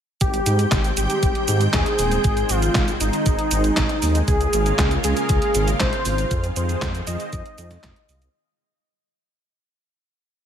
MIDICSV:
0, 0, Header, 1, 5, 480
1, 0, Start_track
1, 0, Key_signature, -4, "major"
1, 0, Tempo, 508475
1, 198, Time_signature, 4, 2, 24, 8
1, 9869, End_track
2, 0, Start_track
2, 0, Title_t, "Analog synth lead"
2, 0, Program_c, 0, 81
2, 199, Note_on_c, 0, 67, 103
2, 823, Note_off_c, 0, 67, 0
2, 919, Note_on_c, 0, 67, 99
2, 1542, Note_off_c, 0, 67, 0
2, 1640, Note_on_c, 0, 68, 102
2, 2359, Note_on_c, 0, 65, 90
2, 2373, Note_off_c, 0, 68, 0
2, 2752, Note_off_c, 0, 65, 0
2, 2839, Note_on_c, 0, 63, 104
2, 3943, Note_off_c, 0, 63, 0
2, 4037, Note_on_c, 0, 68, 106
2, 4661, Note_off_c, 0, 68, 0
2, 4759, Note_on_c, 0, 68, 103
2, 5382, Note_off_c, 0, 68, 0
2, 5478, Note_on_c, 0, 72, 98
2, 6102, Note_off_c, 0, 72, 0
2, 6198, Note_on_c, 0, 72, 87
2, 6591, Note_off_c, 0, 72, 0
2, 6674, Note_on_c, 0, 75, 102
2, 7780, Note_off_c, 0, 75, 0
2, 9869, End_track
3, 0, Start_track
3, 0, Title_t, "Analog synth pad"
3, 0, Program_c, 1, 89
3, 195, Note_on_c, 1, 51, 84
3, 195, Note_on_c, 1, 56, 79
3, 195, Note_on_c, 1, 79, 94
3, 197, Note_on_c, 1, 60, 81
3, 3999, Note_off_c, 1, 51, 0
3, 3999, Note_off_c, 1, 79, 0
3, 4000, Note_off_c, 1, 60, 0
3, 4037, Note_on_c, 1, 58, 75
3, 4038, Note_on_c, 1, 49, 86
3, 4039, Note_on_c, 1, 65, 94
3, 5919, Note_off_c, 1, 56, 0
3, 5939, Note_off_c, 1, 49, 0
3, 5939, Note_off_c, 1, 58, 0
3, 5954, Note_on_c, 1, 56, 79
3, 5955, Note_on_c, 1, 51, 87
3, 5955, Note_on_c, 1, 60, 78
3, 7841, Note_off_c, 1, 65, 0
3, 7857, Note_off_c, 1, 51, 0
3, 7857, Note_off_c, 1, 56, 0
3, 7857, Note_off_c, 1, 60, 0
3, 9869, End_track
4, 0, Start_track
4, 0, Title_t, "Detuned saw bass"
4, 0, Program_c, 2, 39
4, 200, Note_on_c, 2, 32, 101
4, 383, Note_off_c, 2, 32, 0
4, 438, Note_on_c, 2, 44, 82
4, 622, Note_off_c, 2, 44, 0
4, 681, Note_on_c, 2, 32, 95
4, 863, Note_off_c, 2, 32, 0
4, 916, Note_on_c, 2, 32, 82
4, 1009, Note_off_c, 2, 32, 0
4, 1160, Note_on_c, 2, 32, 89
4, 1251, Note_off_c, 2, 32, 0
4, 1398, Note_on_c, 2, 44, 101
4, 1582, Note_off_c, 2, 44, 0
4, 1640, Note_on_c, 2, 39, 98
4, 1731, Note_off_c, 2, 39, 0
4, 1878, Note_on_c, 2, 27, 88
4, 2062, Note_off_c, 2, 27, 0
4, 2119, Note_on_c, 2, 32, 103
4, 2302, Note_off_c, 2, 32, 0
4, 2359, Note_on_c, 2, 32, 97
4, 2542, Note_off_c, 2, 32, 0
4, 2599, Note_on_c, 2, 32, 95
4, 2782, Note_off_c, 2, 32, 0
4, 2838, Note_on_c, 2, 32, 104
4, 2930, Note_off_c, 2, 32, 0
4, 3079, Note_on_c, 2, 32, 89
4, 3170, Note_off_c, 2, 32, 0
4, 3319, Note_on_c, 2, 32, 92
4, 3502, Note_off_c, 2, 32, 0
4, 3559, Note_on_c, 2, 32, 90
4, 3650, Note_off_c, 2, 32, 0
4, 3800, Note_on_c, 2, 39, 92
4, 3982, Note_off_c, 2, 39, 0
4, 4038, Note_on_c, 2, 37, 106
4, 4222, Note_off_c, 2, 37, 0
4, 4279, Note_on_c, 2, 32, 85
4, 4462, Note_off_c, 2, 32, 0
4, 4519, Note_on_c, 2, 37, 96
4, 4702, Note_off_c, 2, 37, 0
4, 4762, Note_on_c, 2, 37, 82
4, 4852, Note_off_c, 2, 37, 0
4, 4998, Note_on_c, 2, 37, 90
4, 5090, Note_off_c, 2, 37, 0
4, 5238, Note_on_c, 2, 32, 107
4, 5422, Note_off_c, 2, 32, 0
4, 5477, Note_on_c, 2, 32, 94
4, 5570, Note_off_c, 2, 32, 0
4, 5718, Note_on_c, 2, 32, 91
4, 5902, Note_off_c, 2, 32, 0
4, 5958, Note_on_c, 2, 41, 100
4, 6142, Note_off_c, 2, 41, 0
4, 6195, Note_on_c, 2, 41, 100
4, 6380, Note_off_c, 2, 41, 0
4, 6438, Note_on_c, 2, 41, 98
4, 6622, Note_off_c, 2, 41, 0
4, 6675, Note_on_c, 2, 41, 104
4, 6769, Note_off_c, 2, 41, 0
4, 6917, Note_on_c, 2, 41, 93
4, 7009, Note_off_c, 2, 41, 0
4, 7156, Note_on_c, 2, 41, 92
4, 7340, Note_off_c, 2, 41, 0
4, 7397, Note_on_c, 2, 41, 88
4, 7490, Note_off_c, 2, 41, 0
4, 7636, Note_on_c, 2, 36, 99
4, 7821, Note_off_c, 2, 36, 0
4, 9869, End_track
5, 0, Start_track
5, 0, Title_t, "Drums"
5, 198, Note_on_c, 9, 42, 71
5, 198, Note_on_c, 9, 69, 38
5, 200, Note_on_c, 9, 36, 121
5, 292, Note_off_c, 9, 42, 0
5, 292, Note_off_c, 9, 69, 0
5, 294, Note_off_c, 9, 36, 0
5, 317, Note_on_c, 9, 42, 42
5, 317, Note_on_c, 9, 69, 27
5, 412, Note_off_c, 9, 42, 0
5, 412, Note_off_c, 9, 69, 0
5, 437, Note_on_c, 9, 42, 100
5, 437, Note_on_c, 9, 69, 70
5, 531, Note_off_c, 9, 42, 0
5, 531, Note_off_c, 9, 69, 0
5, 556, Note_on_c, 9, 42, 40
5, 556, Note_on_c, 9, 69, 28
5, 651, Note_off_c, 9, 42, 0
5, 651, Note_off_c, 9, 69, 0
5, 676, Note_on_c, 9, 38, 115
5, 676, Note_on_c, 9, 39, 102
5, 676, Note_on_c, 9, 42, 69
5, 676, Note_on_c, 9, 69, 37
5, 680, Note_on_c, 9, 36, 117
5, 770, Note_off_c, 9, 38, 0
5, 770, Note_off_c, 9, 39, 0
5, 770, Note_off_c, 9, 42, 0
5, 770, Note_off_c, 9, 69, 0
5, 774, Note_off_c, 9, 36, 0
5, 797, Note_on_c, 9, 42, 43
5, 797, Note_on_c, 9, 69, 28
5, 891, Note_off_c, 9, 42, 0
5, 891, Note_off_c, 9, 69, 0
5, 916, Note_on_c, 9, 42, 98
5, 916, Note_on_c, 9, 69, 68
5, 1010, Note_off_c, 9, 42, 0
5, 1010, Note_off_c, 9, 69, 0
5, 1036, Note_on_c, 9, 42, 43
5, 1036, Note_on_c, 9, 69, 30
5, 1131, Note_off_c, 9, 42, 0
5, 1131, Note_off_c, 9, 69, 0
5, 1159, Note_on_c, 9, 42, 70
5, 1159, Note_on_c, 9, 69, 38
5, 1160, Note_on_c, 9, 36, 119
5, 1253, Note_off_c, 9, 42, 0
5, 1253, Note_off_c, 9, 69, 0
5, 1254, Note_off_c, 9, 36, 0
5, 1276, Note_on_c, 9, 42, 42
5, 1371, Note_off_c, 9, 42, 0
5, 1396, Note_on_c, 9, 42, 98
5, 1396, Note_on_c, 9, 69, 69
5, 1491, Note_off_c, 9, 42, 0
5, 1491, Note_off_c, 9, 69, 0
5, 1516, Note_on_c, 9, 42, 43
5, 1516, Note_on_c, 9, 69, 29
5, 1611, Note_off_c, 9, 42, 0
5, 1611, Note_off_c, 9, 69, 0
5, 1637, Note_on_c, 9, 38, 123
5, 1637, Note_on_c, 9, 39, 101
5, 1637, Note_on_c, 9, 42, 72
5, 1637, Note_on_c, 9, 69, 40
5, 1640, Note_on_c, 9, 36, 118
5, 1731, Note_off_c, 9, 38, 0
5, 1731, Note_off_c, 9, 39, 0
5, 1731, Note_off_c, 9, 42, 0
5, 1731, Note_off_c, 9, 69, 0
5, 1734, Note_off_c, 9, 36, 0
5, 1757, Note_on_c, 9, 42, 42
5, 1851, Note_off_c, 9, 42, 0
5, 1876, Note_on_c, 9, 46, 78
5, 1876, Note_on_c, 9, 69, 66
5, 1970, Note_off_c, 9, 46, 0
5, 1970, Note_off_c, 9, 69, 0
5, 1996, Note_on_c, 9, 42, 41
5, 1996, Note_on_c, 9, 69, 28
5, 2091, Note_off_c, 9, 42, 0
5, 2091, Note_off_c, 9, 69, 0
5, 2117, Note_on_c, 9, 42, 68
5, 2117, Note_on_c, 9, 69, 37
5, 2119, Note_on_c, 9, 36, 123
5, 2211, Note_off_c, 9, 42, 0
5, 2211, Note_off_c, 9, 69, 0
5, 2213, Note_off_c, 9, 36, 0
5, 2236, Note_on_c, 9, 42, 42
5, 2236, Note_on_c, 9, 69, 27
5, 2330, Note_off_c, 9, 42, 0
5, 2330, Note_off_c, 9, 69, 0
5, 2354, Note_on_c, 9, 42, 103
5, 2354, Note_on_c, 9, 69, 67
5, 2449, Note_off_c, 9, 42, 0
5, 2449, Note_off_c, 9, 69, 0
5, 2477, Note_on_c, 9, 42, 40
5, 2477, Note_on_c, 9, 69, 29
5, 2571, Note_off_c, 9, 42, 0
5, 2571, Note_off_c, 9, 69, 0
5, 2596, Note_on_c, 9, 38, 127
5, 2596, Note_on_c, 9, 39, 97
5, 2596, Note_on_c, 9, 42, 72
5, 2596, Note_on_c, 9, 69, 37
5, 2599, Note_on_c, 9, 36, 126
5, 2690, Note_off_c, 9, 38, 0
5, 2690, Note_off_c, 9, 39, 0
5, 2690, Note_off_c, 9, 42, 0
5, 2690, Note_off_c, 9, 69, 0
5, 2694, Note_off_c, 9, 36, 0
5, 2718, Note_on_c, 9, 42, 43
5, 2718, Note_on_c, 9, 69, 27
5, 2813, Note_off_c, 9, 42, 0
5, 2813, Note_off_c, 9, 69, 0
5, 2837, Note_on_c, 9, 42, 96
5, 2837, Note_on_c, 9, 69, 68
5, 2932, Note_off_c, 9, 42, 0
5, 2932, Note_off_c, 9, 69, 0
5, 2957, Note_on_c, 9, 42, 44
5, 2957, Note_on_c, 9, 69, 29
5, 3052, Note_off_c, 9, 42, 0
5, 3052, Note_off_c, 9, 69, 0
5, 3076, Note_on_c, 9, 42, 70
5, 3076, Note_on_c, 9, 69, 39
5, 3079, Note_on_c, 9, 36, 122
5, 3171, Note_off_c, 9, 42, 0
5, 3171, Note_off_c, 9, 69, 0
5, 3174, Note_off_c, 9, 36, 0
5, 3196, Note_on_c, 9, 42, 44
5, 3291, Note_off_c, 9, 42, 0
5, 3315, Note_on_c, 9, 42, 97
5, 3315, Note_on_c, 9, 69, 65
5, 3410, Note_off_c, 9, 42, 0
5, 3410, Note_off_c, 9, 69, 0
5, 3437, Note_on_c, 9, 42, 43
5, 3437, Note_on_c, 9, 69, 30
5, 3531, Note_off_c, 9, 42, 0
5, 3531, Note_off_c, 9, 69, 0
5, 3557, Note_on_c, 9, 38, 123
5, 3557, Note_on_c, 9, 39, 96
5, 3557, Note_on_c, 9, 42, 72
5, 3557, Note_on_c, 9, 69, 39
5, 3559, Note_on_c, 9, 36, 119
5, 3651, Note_off_c, 9, 38, 0
5, 3651, Note_off_c, 9, 39, 0
5, 3651, Note_off_c, 9, 42, 0
5, 3651, Note_off_c, 9, 69, 0
5, 3653, Note_off_c, 9, 36, 0
5, 3676, Note_on_c, 9, 42, 42
5, 3770, Note_off_c, 9, 42, 0
5, 3797, Note_on_c, 9, 46, 73
5, 3797, Note_on_c, 9, 69, 65
5, 3892, Note_off_c, 9, 46, 0
5, 3892, Note_off_c, 9, 69, 0
5, 3918, Note_on_c, 9, 42, 42
5, 3918, Note_on_c, 9, 69, 29
5, 4012, Note_off_c, 9, 42, 0
5, 4012, Note_off_c, 9, 69, 0
5, 4039, Note_on_c, 9, 36, 127
5, 4039, Note_on_c, 9, 42, 70
5, 4039, Note_on_c, 9, 69, 40
5, 4133, Note_off_c, 9, 36, 0
5, 4133, Note_off_c, 9, 42, 0
5, 4133, Note_off_c, 9, 69, 0
5, 4160, Note_on_c, 9, 42, 42
5, 4160, Note_on_c, 9, 69, 26
5, 4254, Note_off_c, 9, 42, 0
5, 4254, Note_off_c, 9, 69, 0
5, 4278, Note_on_c, 9, 42, 99
5, 4278, Note_on_c, 9, 69, 69
5, 4373, Note_off_c, 9, 42, 0
5, 4373, Note_off_c, 9, 69, 0
5, 4399, Note_on_c, 9, 42, 41
5, 4399, Note_on_c, 9, 69, 29
5, 4494, Note_off_c, 9, 42, 0
5, 4494, Note_off_c, 9, 69, 0
5, 4518, Note_on_c, 9, 38, 127
5, 4518, Note_on_c, 9, 39, 94
5, 4518, Note_on_c, 9, 42, 69
5, 4518, Note_on_c, 9, 69, 41
5, 4519, Note_on_c, 9, 36, 127
5, 4613, Note_off_c, 9, 38, 0
5, 4613, Note_off_c, 9, 39, 0
5, 4613, Note_off_c, 9, 42, 0
5, 4613, Note_off_c, 9, 69, 0
5, 4614, Note_off_c, 9, 36, 0
5, 4636, Note_on_c, 9, 42, 43
5, 4636, Note_on_c, 9, 69, 27
5, 4730, Note_off_c, 9, 42, 0
5, 4730, Note_off_c, 9, 69, 0
5, 4757, Note_on_c, 9, 42, 96
5, 4757, Note_on_c, 9, 69, 70
5, 4852, Note_off_c, 9, 42, 0
5, 4852, Note_off_c, 9, 69, 0
5, 4877, Note_on_c, 9, 42, 42
5, 4877, Note_on_c, 9, 69, 30
5, 4971, Note_off_c, 9, 42, 0
5, 4971, Note_off_c, 9, 69, 0
5, 4995, Note_on_c, 9, 42, 69
5, 4995, Note_on_c, 9, 69, 39
5, 4999, Note_on_c, 9, 36, 127
5, 5090, Note_off_c, 9, 42, 0
5, 5090, Note_off_c, 9, 69, 0
5, 5093, Note_off_c, 9, 36, 0
5, 5116, Note_on_c, 9, 42, 43
5, 5210, Note_off_c, 9, 42, 0
5, 5236, Note_on_c, 9, 42, 96
5, 5236, Note_on_c, 9, 69, 70
5, 5330, Note_off_c, 9, 42, 0
5, 5330, Note_off_c, 9, 69, 0
5, 5358, Note_on_c, 9, 42, 43
5, 5358, Note_on_c, 9, 69, 29
5, 5453, Note_off_c, 9, 42, 0
5, 5453, Note_off_c, 9, 69, 0
5, 5476, Note_on_c, 9, 38, 127
5, 5476, Note_on_c, 9, 39, 101
5, 5476, Note_on_c, 9, 42, 72
5, 5476, Note_on_c, 9, 69, 41
5, 5478, Note_on_c, 9, 36, 125
5, 5571, Note_off_c, 9, 38, 0
5, 5571, Note_off_c, 9, 39, 0
5, 5571, Note_off_c, 9, 42, 0
5, 5571, Note_off_c, 9, 69, 0
5, 5573, Note_off_c, 9, 36, 0
5, 5595, Note_on_c, 9, 42, 41
5, 5690, Note_off_c, 9, 42, 0
5, 5715, Note_on_c, 9, 46, 77
5, 5715, Note_on_c, 9, 69, 70
5, 5809, Note_off_c, 9, 46, 0
5, 5809, Note_off_c, 9, 69, 0
5, 5837, Note_on_c, 9, 42, 43
5, 5837, Note_on_c, 9, 69, 30
5, 5931, Note_off_c, 9, 42, 0
5, 5931, Note_off_c, 9, 69, 0
5, 5957, Note_on_c, 9, 42, 66
5, 5957, Note_on_c, 9, 69, 42
5, 5958, Note_on_c, 9, 36, 124
5, 6051, Note_off_c, 9, 42, 0
5, 6051, Note_off_c, 9, 69, 0
5, 6052, Note_off_c, 9, 36, 0
5, 6076, Note_on_c, 9, 42, 40
5, 6076, Note_on_c, 9, 69, 29
5, 6170, Note_off_c, 9, 42, 0
5, 6170, Note_off_c, 9, 69, 0
5, 6196, Note_on_c, 9, 42, 92
5, 6196, Note_on_c, 9, 69, 74
5, 6291, Note_off_c, 9, 42, 0
5, 6291, Note_off_c, 9, 69, 0
5, 6317, Note_on_c, 9, 42, 39
5, 6317, Note_on_c, 9, 69, 31
5, 6412, Note_off_c, 9, 42, 0
5, 6412, Note_off_c, 9, 69, 0
5, 6437, Note_on_c, 9, 38, 123
5, 6437, Note_on_c, 9, 39, 92
5, 6437, Note_on_c, 9, 42, 66
5, 6437, Note_on_c, 9, 69, 42
5, 6438, Note_on_c, 9, 36, 126
5, 6532, Note_off_c, 9, 36, 0
5, 6532, Note_off_c, 9, 38, 0
5, 6532, Note_off_c, 9, 39, 0
5, 6532, Note_off_c, 9, 42, 0
5, 6532, Note_off_c, 9, 69, 0
5, 6557, Note_on_c, 9, 42, 41
5, 6557, Note_on_c, 9, 69, 29
5, 6652, Note_off_c, 9, 42, 0
5, 6652, Note_off_c, 9, 69, 0
5, 6676, Note_on_c, 9, 42, 95
5, 6676, Note_on_c, 9, 69, 74
5, 6770, Note_off_c, 9, 42, 0
5, 6770, Note_off_c, 9, 69, 0
5, 6795, Note_on_c, 9, 42, 42
5, 6795, Note_on_c, 9, 69, 33
5, 6889, Note_off_c, 9, 42, 0
5, 6889, Note_off_c, 9, 69, 0
5, 6917, Note_on_c, 9, 42, 67
5, 6917, Note_on_c, 9, 69, 40
5, 6918, Note_on_c, 9, 36, 123
5, 7011, Note_off_c, 9, 42, 0
5, 7011, Note_off_c, 9, 69, 0
5, 7012, Note_off_c, 9, 36, 0
5, 7038, Note_on_c, 9, 42, 41
5, 7133, Note_off_c, 9, 42, 0
5, 7157, Note_on_c, 9, 42, 91
5, 7157, Note_on_c, 9, 69, 74
5, 7252, Note_off_c, 9, 42, 0
5, 7252, Note_off_c, 9, 69, 0
5, 7275, Note_on_c, 9, 38, 39
5, 7275, Note_on_c, 9, 42, 40
5, 7275, Note_on_c, 9, 69, 32
5, 7370, Note_off_c, 9, 38, 0
5, 7370, Note_off_c, 9, 42, 0
5, 7370, Note_off_c, 9, 69, 0
5, 7396, Note_on_c, 9, 38, 127
5, 7396, Note_on_c, 9, 39, 95
5, 7396, Note_on_c, 9, 42, 67
5, 7396, Note_on_c, 9, 69, 41
5, 7398, Note_on_c, 9, 36, 124
5, 7490, Note_off_c, 9, 38, 0
5, 7490, Note_off_c, 9, 39, 0
5, 7490, Note_off_c, 9, 42, 0
5, 7490, Note_off_c, 9, 69, 0
5, 7492, Note_off_c, 9, 36, 0
5, 7517, Note_on_c, 9, 42, 42
5, 7611, Note_off_c, 9, 42, 0
5, 7637, Note_on_c, 9, 46, 75
5, 7637, Note_on_c, 9, 69, 69
5, 7732, Note_off_c, 9, 46, 0
5, 7732, Note_off_c, 9, 69, 0
5, 7757, Note_on_c, 9, 42, 40
5, 7757, Note_on_c, 9, 69, 31
5, 7851, Note_off_c, 9, 42, 0
5, 7851, Note_off_c, 9, 69, 0
5, 9869, End_track
0, 0, End_of_file